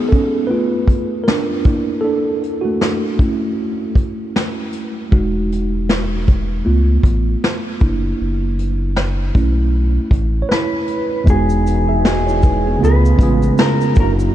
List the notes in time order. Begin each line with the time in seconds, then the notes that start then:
Already playing: G#3 B3 D#4 F#4 G#4 D#5
0.09 C#4 A4, kick, closed hi-hat
0.47 A3 B3 F4 B4
0.88 kick, closed hi-hat
1.24 A#4
1.28 D4, snare
1.64 A#3 D4 E4, kick, closed hi-hat
2.01 D4 A4
2.43 closed hi-hat
2.61 A3 F#4
2.81 snare
3.19 A3 C#4 E4, kick, closed hi-hat
3.95 kick, closed hi-hat
4.36 snare
4.72 closed hi-hat
5.11 E1 G#3 D#4 F#4, kick
5.52 closed hi-hat
5.89 snare
6.27 kick, closed hi-hat
6.65 C#2 A3 B3 F4
7.03 A1, kick, closed hi-hat
7.44 snare
7.80 F#1 A#3 D4 E4, kick, closed hi-hat
8.21 F#1
8.59 closed hi-hat
8.96 snare
9.35 B1 A3 C#4 E4, kick, closed hi-hat
10.11 A1, kick, closed hi-hat
10.42 C#5
10.49 E4 B4, snare
10.87 closed hi-hat
11.24 E1 E2 G#3 B3, kick, shaker
11.28 E3 G#3 D#4 F#4 G#4
11.49 shaker
11.67 closed hi-hat, shaker
11.89 G#4 E5
12.05 F#4 G#4 D#5, snare, shaker
12.26 E4 C#5, shaker
12.43 D#4 B4, kick, closed hi-hat, shaker
12.67 B3 G#4
12.79 C#3 F3 A3 B3 F4
12.83 C#2 F4 G#4 B4, shaker
13.05 shaker
13.17 A1 C#3 G#3 B3, kick, closed hi-hat, shaker
13.22 F4 G#4
13.43 shaker
13.58 A#4, snare, shaker
13.81 shaker
13.95 F#1 F#2 D3 F#3 A#3 D4 E4, kick, closed hi-hat, shaker
13.99 E4 F#4 A#4
14.19 shaker